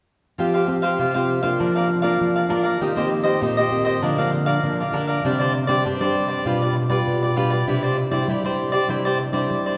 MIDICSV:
0, 0, Header, 1, 4, 480
1, 0, Start_track
1, 0, Tempo, 607533
1, 306, Time_signature, 4, 2, 24, 8
1, 7722, End_track
2, 0, Start_track
2, 0, Title_t, "Cavaquinho"
2, 0, Program_c, 0, 24
2, 302, Note_on_c, 0, 65, 43
2, 306, Note_on_c, 0, 67, 51
2, 310, Note_on_c, 0, 72, 55
2, 318, Note_on_c, 0, 77, 51
2, 414, Note_off_c, 0, 65, 0
2, 416, Note_off_c, 0, 67, 0
2, 417, Note_off_c, 0, 77, 0
2, 419, Note_off_c, 0, 72, 0
2, 427, Note_on_c, 0, 77, 56
2, 433, Note_on_c, 0, 72, 53
2, 440, Note_on_c, 0, 67, 41
2, 526, Note_off_c, 0, 67, 0
2, 529, Note_off_c, 0, 72, 0
2, 531, Note_off_c, 0, 77, 0
2, 649, Note_on_c, 0, 77, 65
2, 656, Note_on_c, 0, 72, 62
2, 663, Note_on_c, 0, 67, 47
2, 768, Note_off_c, 0, 77, 0
2, 771, Note_off_c, 0, 72, 0
2, 775, Note_off_c, 0, 67, 0
2, 782, Note_on_c, 0, 65, 42
2, 787, Note_on_c, 0, 67, 43
2, 793, Note_on_c, 0, 72, 44
2, 797, Note_on_c, 0, 77, 46
2, 894, Note_off_c, 0, 65, 0
2, 894, Note_off_c, 0, 77, 0
2, 897, Note_off_c, 0, 67, 0
2, 900, Note_off_c, 0, 72, 0
2, 903, Note_on_c, 0, 77, 59
2, 910, Note_on_c, 0, 72, 52
2, 918, Note_on_c, 0, 67, 50
2, 1118, Note_off_c, 0, 77, 0
2, 1122, Note_off_c, 0, 72, 0
2, 1127, Note_on_c, 0, 77, 61
2, 1129, Note_off_c, 0, 67, 0
2, 1132, Note_on_c, 0, 72, 53
2, 1139, Note_on_c, 0, 67, 47
2, 1247, Note_off_c, 0, 77, 0
2, 1249, Note_off_c, 0, 72, 0
2, 1253, Note_off_c, 0, 67, 0
2, 1259, Note_on_c, 0, 62, 44
2, 1264, Note_on_c, 0, 70, 46
2, 1269, Note_on_c, 0, 74, 47
2, 1273, Note_on_c, 0, 77, 49
2, 1373, Note_off_c, 0, 62, 0
2, 1375, Note_off_c, 0, 70, 0
2, 1378, Note_off_c, 0, 74, 0
2, 1378, Note_off_c, 0, 77, 0
2, 1388, Note_on_c, 0, 77, 54
2, 1394, Note_on_c, 0, 74, 53
2, 1398, Note_on_c, 0, 70, 50
2, 1484, Note_off_c, 0, 70, 0
2, 1487, Note_off_c, 0, 74, 0
2, 1488, Note_off_c, 0, 77, 0
2, 1597, Note_on_c, 0, 77, 62
2, 1604, Note_on_c, 0, 74, 55
2, 1610, Note_on_c, 0, 70, 53
2, 1842, Note_off_c, 0, 77, 0
2, 1845, Note_off_c, 0, 74, 0
2, 1848, Note_off_c, 0, 70, 0
2, 1863, Note_on_c, 0, 77, 48
2, 1869, Note_on_c, 0, 74, 36
2, 1877, Note_on_c, 0, 70, 34
2, 1963, Note_off_c, 0, 70, 0
2, 1967, Note_off_c, 0, 74, 0
2, 1969, Note_on_c, 0, 62, 55
2, 1970, Note_off_c, 0, 77, 0
2, 1972, Note_on_c, 0, 70, 59
2, 1977, Note_on_c, 0, 74, 63
2, 1980, Note_on_c, 0, 77, 71
2, 2070, Note_off_c, 0, 77, 0
2, 2077, Note_off_c, 0, 74, 0
2, 2079, Note_on_c, 0, 77, 56
2, 2085, Note_off_c, 0, 70, 0
2, 2087, Note_on_c, 0, 74, 49
2, 2088, Note_off_c, 0, 62, 0
2, 2094, Note_on_c, 0, 70, 48
2, 2203, Note_off_c, 0, 77, 0
2, 2207, Note_off_c, 0, 74, 0
2, 2211, Note_off_c, 0, 70, 0
2, 2218, Note_on_c, 0, 63, 45
2, 2226, Note_on_c, 0, 67, 45
2, 2226, Note_on_c, 0, 72, 50
2, 2231, Note_on_c, 0, 75, 53
2, 2331, Note_off_c, 0, 75, 0
2, 2333, Note_off_c, 0, 63, 0
2, 2336, Note_off_c, 0, 67, 0
2, 2337, Note_off_c, 0, 72, 0
2, 2341, Note_on_c, 0, 75, 57
2, 2346, Note_on_c, 0, 72, 55
2, 2352, Note_on_c, 0, 67, 41
2, 2443, Note_off_c, 0, 67, 0
2, 2444, Note_off_c, 0, 72, 0
2, 2447, Note_off_c, 0, 75, 0
2, 2556, Note_on_c, 0, 75, 58
2, 2564, Note_on_c, 0, 72, 58
2, 2569, Note_on_c, 0, 67, 49
2, 2681, Note_off_c, 0, 75, 0
2, 2685, Note_off_c, 0, 72, 0
2, 2688, Note_off_c, 0, 67, 0
2, 2696, Note_on_c, 0, 63, 49
2, 2701, Note_on_c, 0, 67, 47
2, 2705, Note_on_c, 0, 72, 50
2, 2710, Note_on_c, 0, 75, 53
2, 2811, Note_off_c, 0, 63, 0
2, 2811, Note_off_c, 0, 75, 0
2, 2814, Note_off_c, 0, 67, 0
2, 2816, Note_off_c, 0, 72, 0
2, 2821, Note_on_c, 0, 75, 62
2, 2827, Note_on_c, 0, 72, 55
2, 2836, Note_on_c, 0, 67, 54
2, 3031, Note_off_c, 0, 75, 0
2, 3036, Note_off_c, 0, 72, 0
2, 3041, Note_on_c, 0, 75, 64
2, 3043, Note_off_c, 0, 67, 0
2, 3046, Note_on_c, 0, 72, 54
2, 3053, Note_on_c, 0, 67, 54
2, 3164, Note_off_c, 0, 75, 0
2, 3166, Note_off_c, 0, 72, 0
2, 3170, Note_off_c, 0, 67, 0
2, 3176, Note_on_c, 0, 62, 49
2, 3180, Note_on_c, 0, 70, 49
2, 3183, Note_on_c, 0, 74, 48
2, 3188, Note_on_c, 0, 77, 49
2, 3291, Note_off_c, 0, 62, 0
2, 3294, Note_off_c, 0, 70, 0
2, 3294, Note_off_c, 0, 77, 0
2, 3295, Note_off_c, 0, 74, 0
2, 3304, Note_on_c, 0, 77, 54
2, 3311, Note_on_c, 0, 74, 53
2, 3317, Note_on_c, 0, 70, 51
2, 3405, Note_off_c, 0, 70, 0
2, 3407, Note_off_c, 0, 74, 0
2, 3411, Note_off_c, 0, 77, 0
2, 3525, Note_on_c, 0, 77, 66
2, 3532, Note_on_c, 0, 74, 64
2, 3539, Note_on_c, 0, 70, 54
2, 3766, Note_off_c, 0, 77, 0
2, 3769, Note_off_c, 0, 74, 0
2, 3773, Note_off_c, 0, 70, 0
2, 3793, Note_on_c, 0, 77, 45
2, 3798, Note_on_c, 0, 74, 46
2, 3804, Note_on_c, 0, 70, 36
2, 3891, Note_off_c, 0, 70, 0
2, 3893, Note_off_c, 0, 74, 0
2, 3895, Note_on_c, 0, 62, 60
2, 3900, Note_off_c, 0, 77, 0
2, 3900, Note_on_c, 0, 70, 70
2, 3903, Note_on_c, 0, 74, 65
2, 3909, Note_on_c, 0, 77, 67
2, 4000, Note_off_c, 0, 77, 0
2, 4005, Note_off_c, 0, 74, 0
2, 4009, Note_on_c, 0, 77, 60
2, 4011, Note_off_c, 0, 62, 0
2, 4011, Note_off_c, 0, 70, 0
2, 4014, Note_on_c, 0, 74, 56
2, 4021, Note_on_c, 0, 70, 49
2, 4128, Note_off_c, 0, 77, 0
2, 4131, Note_off_c, 0, 74, 0
2, 4134, Note_off_c, 0, 70, 0
2, 4143, Note_on_c, 0, 62, 45
2, 4147, Note_on_c, 0, 67, 49
2, 4152, Note_on_c, 0, 72, 52
2, 4157, Note_on_c, 0, 74, 50
2, 4253, Note_off_c, 0, 74, 0
2, 4255, Note_off_c, 0, 62, 0
2, 4257, Note_off_c, 0, 67, 0
2, 4259, Note_off_c, 0, 72, 0
2, 4262, Note_on_c, 0, 74, 57
2, 4270, Note_on_c, 0, 72, 50
2, 4276, Note_on_c, 0, 67, 47
2, 4364, Note_off_c, 0, 67, 0
2, 4366, Note_off_c, 0, 72, 0
2, 4371, Note_off_c, 0, 74, 0
2, 4482, Note_on_c, 0, 74, 65
2, 4490, Note_on_c, 0, 72, 59
2, 4496, Note_on_c, 0, 67, 54
2, 4604, Note_off_c, 0, 74, 0
2, 4608, Note_off_c, 0, 72, 0
2, 4611, Note_off_c, 0, 67, 0
2, 4622, Note_on_c, 0, 62, 47
2, 4625, Note_on_c, 0, 67, 51
2, 4632, Note_on_c, 0, 72, 52
2, 4634, Note_on_c, 0, 74, 50
2, 4734, Note_off_c, 0, 62, 0
2, 4736, Note_off_c, 0, 67, 0
2, 4738, Note_off_c, 0, 74, 0
2, 4739, Note_off_c, 0, 72, 0
2, 4747, Note_on_c, 0, 74, 63
2, 4756, Note_on_c, 0, 72, 54
2, 4761, Note_on_c, 0, 67, 51
2, 4954, Note_off_c, 0, 74, 0
2, 4961, Note_off_c, 0, 72, 0
2, 4964, Note_on_c, 0, 74, 58
2, 4968, Note_off_c, 0, 67, 0
2, 4970, Note_on_c, 0, 72, 54
2, 4978, Note_on_c, 0, 67, 49
2, 5085, Note_off_c, 0, 74, 0
2, 5088, Note_off_c, 0, 72, 0
2, 5092, Note_off_c, 0, 67, 0
2, 5100, Note_on_c, 0, 65, 44
2, 5106, Note_on_c, 0, 67, 47
2, 5110, Note_on_c, 0, 71, 49
2, 5112, Note_on_c, 0, 74, 50
2, 5213, Note_off_c, 0, 65, 0
2, 5216, Note_off_c, 0, 67, 0
2, 5218, Note_off_c, 0, 71, 0
2, 5219, Note_off_c, 0, 74, 0
2, 5230, Note_on_c, 0, 74, 59
2, 5237, Note_on_c, 0, 71, 54
2, 5242, Note_on_c, 0, 67, 44
2, 5330, Note_off_c, 0, 67, 0
2, 5333, Note_off_c, 0, 71, 0
2, 5334, Note_off_c, 0, 74, 0
2, 5448, Note_on_c, 0, 74, 67
2, 5456, Note_on_c, 0, 71, 58
2, 5461, Note_on_c, 0, 67, 50
2, 5687, Note_off_c, 0, 74, 0
2, 5691, Note_off_c, 0, 71, 0
2, 5694, Note_off_c, 0, 67, 0
2, 5709, Note_on_c, 0, 74, 44
2, 5715, Note_on_c, 0, 71, 37
2, 5722, Note_on_c, 0, 67, 39
2, 5812, Note_off_c, 0, 67, 0
2, 5815, Note_off_c, 0, 71, 0
2, 5817, Note_on_c, 0, 65, 64
2, 5818, Note_off_c, 0, 74, 0
2, 5821, Note_on_c, 0, 67, 66
2, 5824, Note_on_c, 0, 71, 70
2, 5828, Note_on_c, 0, 74, 62
2, 5919, Note_off_c, 0, 74, 0
2, 5924, Note_off_c, 0, 71, 0
2, 5928, Note_on_c, 0, 74, 59
2, 5931, Note_off_c, 0, 67, 0
2, 5932, Note_off_c, 0, 65, 0
2, 5934, Note_on_c, 0, 71, 58
2, 5941, Note_on_c, 0, 67, 51
2, 6047, Note_off_c, 0, 74, 0
2, 6050, Note_off_c, 0, 71, 0
2, 6054, Note_off_c, 0, 67, 0
2, 6063, Note_on_c, 0, 64, 50
2, 6070, Note_on_c, 0, 67, 51
2, 6072, Note_on_c, 0, 72, 51
2, 6078, Note_on_c, 0, 74, 49
2, 6174, Note_off_c, 0, 74, 0
2, 6175, Note_off_c, 0, 64, 0
2, 6178, Note_off_c, 0, 67, 0
2, 6179, Note_off_c, 0, 72, 0
2, 6183, Note_on_c, 0, 74, 59
2, 6192, Note_on_c, 0, 72, 47
2, 6198, Note_on_c, 0, 67, 53
2, 6292, Note_off_c, 0, 67, 0
2, 6295, Note_off_c, 0, 72, 0
2, 6295, Note_off_c, 0, 74, 0
2, 6411, Note_on_c, 0, 74, 61
2, 6419, Note_on_c, 0, 72, 58
2, 6424, Note_on_c, 0, 67, 52
2, 6529, Note_off_c, 0, 74, 0
2, 6533, Note_off_c, 0, 72, 0
2, 6535, Note_off_c, 0, 67, 0
2, 6548, Note_on_c, 0, 64, 46
2, 6552, Note_on_c, 0, 67, 45
2, 6555, Note_on_c, 0, 72, 47
2, 6562, Note_on_c, 0, 74, 49
2, 6657, Note_off_c, 0, 64, 0
2, 6659, Note_off_c, 0, 67, 0
2, 6661, Note_off_c, 0, 72, 0
2, 6662, Note_off_c, 0, 74, 0
2, 6672, Note_on_c, 0, 74, 53
2, 6680, Note_on_c, 0, 72, 54
2, 6685, Note_on_c, 0, 67, 50
2, 6880, Note_off_c, 0, 74, 0
2, 6886, Note_off_c, 0, 72, 0
2, 6889, Note_on_c, 0, 74, 62
2, 6893, Note_off_c, 0, 67, 0
2, 6896, Note_on_c, 0, 72, 56
2, 6903, Note_on_c, 0, 67, 57
2, 7008, Note_off_c, 0, 74, 0
2, 7011, Note_off_c, 0, 72, 0
2, 7015, Note_off_c, 0, 67, 0
2, 7024, Note_on_c, 0, 64, 45
2, 7027, Note_on_c, 0, 67, 43
2, 7030, Note_on_c, 0, 72, 55
2, 7034, Note_on_c, 0, 74, 48
2, 7135, Note_off_c, 0, 64, 0
2, 7137, Note_off_c, 0, 67, 0
2, 7138, Note_off_c, 0, 72, 0
2, 7140, Note_off_c, 0, 74, 0
2, 7151, Note_on_c, 0, 74, 63
2, 7159, Note_on_c, 0, 72, 52
2, 7165, Note_on_c, 0, 67, 50
2, 7255, Note_off_c, 0, 67, 0
2, 7256, Note_off_c, 0, 72, 0
2, 7258, Note_off_c, 0, 74, 0
2, 7370, Note_on_c, 0, 74, 62
2, 7378, Note_on_c, 0, 72, 55
2, 7384, Note_on_c, 0, 67, 47
2, 7608, Note_off_c, 0, 74, 0
2, 7612, Note_off_c, 0, 72, 0
2, 7615, Note_off_c, 0, 67, 0
2, 7633, Note_on_c, 0, 74, 44
2, 7638, Note_on_c, 0, 72, 39
2, 7645, Note_on_c, 0, 67, 33
2, 7722, Note_off_c, 0, 67, 0
2, 7722, Note_off_c, 0, 72, 0
2, 7722, Note_off_c, 0, 74, 0
2, 7722, End_track
3, 0, Start_track
3, 0, Title_t, "Nylon-string guitar"
3, 0, Program_c, 1, 24
3, 305, Note_on_c, 1, 53, 59
3, 307, Note_on_c, 1, 60, 51
3, 310, Note_on_c, 1, 65, 48
3, 313, Note_on_c, 1, 67, 52
3, 508, Note_off_c, 1, 60, 0
3, 509, Note_off_c, 1, 65, 0
3, 511, Note_off_c, 1, 67, 0
3, 538, Note_on_c, 1, 60, 51
3, 542, Note_on_c, 1, 65, 49
3, 546, Note_on_c, 1, 67, 58
3, 762, Note_off_c, 1, 53, 0
3, 767, Note_off_c, 1, 60, 0
3, 769, Note_off_c, 1, 65, 0
3, 771, Note_off_c, 1, 67, 0
3, 782, Note_on_c, 1, 48, 60
3, 909, Note_on_c, 1, 60, 50
3, 913, Note_on_c, 1, 65, 49
3, 917, Note_on_c, 1, 67, 60
3, 1109, Note_off_c, 1, 60, 0
3, 1111, Note_off_c, 1, 65, 0
3, 1113, Note_off_c, 1, 67, 0
3, 1134, Note_on_c, 1, 58, 54
3, 1137, Note_on_c, 1, 62, 58
3, 1144, Note_on_c, 1, 65, 62
3, 1240, Note_off_c, 1, 48, 0
3, 1267, Note_on_c, 1, 53, 59
3, 1581, Note_off_c, 1, 58, 0
3, 1584, Note_off_c, 1, 62, 0
3, 1585, Note_off_c, 1, 65, 0
3, 1611, Note_on_c, 1, 58, 59
3, 1615, Note_on_c, 1, 62, 52
3, 1618, Note_on_c, 1, 65, 58
3, 1722, Note_off_c, 1, 53, 0
3, 1747, Note_on_c, 1, 53, 57
3, 1940, Note_off_c, 1, 58, 0
3, 1942, Note_off_c, 1, 62, 0
3, 1943, Note_off_c, 1, 65, 0
3, 1976, Note_on_c, 1, 58, 44
3, 1981, Note_on_c, 1, 62, 54
3, 1982, Note_on_c, 1, 65, 58
3, 2183, Note_off_c, 1, 58, 0
3, 2184, Note_off_c, 1, 62, 0
3, 2186, Note_off_c, 1, 65, 0
3, 2203, Note_off_c, 1, 53, 0
3, 2223, Note_on_c, 1, 51, 61
3, 2226, Note_on_c, 1, 58, 50
3, 2226, Note_on_c, 1, 60, 45
3, 2230, Note_on_c, 1, 67, 60
3, 2307, Note_off_c, 1, 58, 0
3, 2307, Note_off_c, 1, 60, 0
3, 2309, Note_off_c, 1, 67, 0
3, 2345, Note_on_c, 1, 58, 56
3, 2351, Note_on_c, 1, 60, 54
3, 2356, Note_on_c, 1, 67, 56
3, 2667, Note_off_c, 1, 58, 0
3, 2671, Note_off_c, 1, 60, 0
3, 2672, Note_off_c, 1, 67, 0
3, 2681, Note_off_c, 1, 51, 0
3, 2699, Note_on_c, 1, 46, 57
3, 2705, Note_on_c, 1, 58, 52
3, 2706, Note_on_c, 1, 60, 49
3, 2709, Note_on_c, 1, 67, 57
3, 2846, Note_off_c, 1, 58, 0
3, 2847, Note_off_c, 1, 60, 0
3, 2849, Note_off_c, 1, 67, 0
3, 2932, Note_on_c, 1, 58, 47
3, 2935, Note_on_c, 1, 60, 52
3, 2938, Note_on_c, 1, 67, 55
3, 3159, Note_off_c, 1, 46, 0
3, 3160, Note_off_c, 1, 58, 0
3, 3160, Note_off_c, 1, 60, 0
3, 3163, Note_off_c, 1, 67, 0
3, 3182, Note_on_c, 1, 50, 61
3, 3184, Note_on_c, 1, 53, 49
3, 3188, Note_on_c, 1, 58, 45
3, 3188, Note_on_c, 1, 62, 50
3, 3256, Note_off_c, 1, 53, 0
3, 3258, Note_off_c, 1, 58, 0
3, 3259, Note_off_c, 1, 62, 0
3, 3303, Note_on_c, 1, 53, 54
3, 3307, Note_on_c, 1, 58, 52
3, 3310, Note_on_c, 1, 62, 56
3, 3626, Note_off_c, 1, 53, 0
3, 3628, Note_off_c, 1, 58, 0
3, 3629, Note_off_c, 1, 62, 0
3, 3640, Note_off_c, 1, 50, 0
3, 3661, Note_on_c, 1, 50, 61
3, 3663, Note_on_c, 1, 53, 54
3, 3666, Note_on_c, 1, 58, 51
3, 3668, Note_on_c, 1, 62, 51
3, 3804, Note_off_c, 1, 53, 0
3, 3805, Note_off_c, 1, 58, 0
3, 3808, Note_off_c, 1, 62, 0
3, 3892, Note_on_c, 1, 53, 49
3, 3896, Note_on_c, 1, 58, 53
3, 3898, Note_on_c, 1, 62, 52
3, 4120, Note_off_c, 1, 50, 0
3, 4120, Note_off_c, 1, 53, 0
3, 4121, Note_off_c, 1, 58, 0
3, 4123, Note_off_c, 1, 62, 0
3, 4145, Note_on_c, 1, 48, 62
3, 4147, Note_on_c, 1, 55, 49
3, 4147, Note_on_c, 1, 60, 49
3, 4153, Note_on_c, 1, 62, 56
3, 4467, Note_off_c, 1, 55, 0
3, 4468, Note_off_c, 1, 60, 0
3, 4471, Note_off_c, 1, 62, 0
3, 4490, Note_on_c, 1, 55, 51
3, 4496, Note_on_c, 1, 60, 52
3, 4497, Note_on_c, 1, 62, 58
3, 4602, Note_off_c, 1, 48, 0
3, 4623, Note_on_c, 1, 43, 60
3, 4700, Note_off_c, 1, 55, 0
3, 4701, Note_off_c, 1, 60, 0
3, 4703, Note_off_c, 1, 62, 0
3, 4747, Note_on_c, 1, 55, 60
3, 4751, Note_on_c, 1, 60, 53
3, 4751, Note_on_c, 1, 62, 61
3, 5068, Note_off_c, 1, 55, 0
3, 5069, Note_off_c, 1, 60, 0
3, 5070, Note_off_c, 1, 62, 0
3, 5080, Note_off_c, 1, 43, 0
3, 5101, Note_on_c, 1, 47, 61
3, 5102, Note_on_c, 1, 55, 54
3, 5105, Note_on_c, 1, 62, 54
3, 5109, Note_on_c, 1, 65, 61
3, 5425, Note_off_c, 1, 55, 0
3, 5427, Note_off_c, 1, 62, 0
3, 5428, Note_off_c, 1, 65, 0
3, 5449, Note_on_c, 1, 55, 52
3, 5454, Note_on_c, 1, 62, 60
3, 5457, Note_on_c, 1, 65, 68
3, 5560, Note_off_c, 1, 47, 0
3, 5586, Note_on_c, 1, 47, 62
3, 5779, Note_off_c, 1, 55, 0
3, 5781, Note_off_c, 1, 62, 0
3, 5783, Note_off_c, 1, 65, 0
3, 5821, Note_on_c, 1, 55, 57
3, 5825, Note_on_c, 1, 62, 52
3, 5828, Note_on_c, 1, 65, 53
3, 5965, Note_off_c, 1, 55, 0
3, 5966, Note_off_c, 1, 62, 0
3, 5968, Note_off_c, 1, 65, 0
3, 6042, Note_off_c, 1, 47, 0
3, 6065, Note_on_c, 1, 48, 65
3, 6068, Note_on_c, 1, 62, 56
3, 6070, Note_on_c, 1, 55, 44
3, 6072, Note_on_c, 1, 64, 52
3, 6388, Note_off_c, 1, 55, 0
3, 6389, Note_off_c, 1, 62, 0
3, 6390, Note_off_c, 1, 64, 0
3, 6407, Note_on_c, 1, 55, 56
3, 6413, Note_on_c, 1, 62, 57
3, 6413, Note_on_c, 1, 64, 56
3, 6521, Note_off_c, 1, 48, 0
3, 6533, Note_off_c, 1, 55, 0
3, 6543, Note_on_c, 1, 55, 65
3, 6620, Note_off_c, 1, 62, 0
3, 6621, Note_off_c, 1, 64, 0
3, 6658, Note_off_c, 1, 55, 0
3, 6667, Note_on_c, 1, 55, 48
3, 6672, Note_on_c, 1, 62, 59
3, 6677, Note_on_c, 1, 64, 59
3, 6988, Note_off_c, 1, 55, 0
3, 6990, Note_off_c, 1, 62, 0
3, 6993, Note_off_c, 1, 64, 0
3, 7020, Note_on_c, 1, 48, 61
3, 7024, Note_on_c, 1, 55, 53
3, 7028, Note_on_c, 1, 62, 51
3, 7029, Note_on_c, 1, 64, 51
3, 7345, Note_off_c, 1, 55, 0
3, 7346, Note_off_c, 1, 62, 0
3, 7349, Note_off_c, 1, 64, 0
3, 7371, Note_on_c, 1, 55, 59
3, 7376, Note_on_c, 1, 62, 60
3, 7379, Note_on_c, 1, 64, 61
3, 7479, Note_off_c, 1, 48, 0
3, 7502, Note_off_c, 1, 55, 0
3, 7512, Note_on_c, 1, 55, 62
3, 7702, Note_off_c, 1, 62, 0
3, 7704, Note_off_c, 1, 64, 0
3, 7722, Note_off_c, 1, 55, 0
3, 7722, End_track
4, 0, Start_track
4, 0, Title_t, "Muted cavaquinho strokes"
4, 532, Note_on_c, 9, 29, 32
4, 611, Note_off_c, 9, 29, 0
4, 1491, Note_on_c, 9, 29, 36
4, 1570, Note_off_c, 9, 29, 0
4, 2450, Note_on_c, 9, 29, 37
4, 2529, Note_off_c, 9, 29, 0
4, 3413, Note_on_c, 9, 29, 31
4, 3492, Note_off_c, 9, 29, 0
4, 4372, Note_on_c, 9, 29, 31
4, 4451, Note_off_c, 9, 29, 0
4, 5338, Note_on_c, 9, 29, 33
4, 5417, Note_off_c, 9, 29, 0
4, 6297, Note_on_c, 9, 29, 36
4, 6376, Note_off_c, 9, 29, 0
4, 7260, Note_on_c, 9, 29, 34
4, 7339, Note_off_c, 9, 29, 0
4, 7722, End_track
0, 0, End_of_file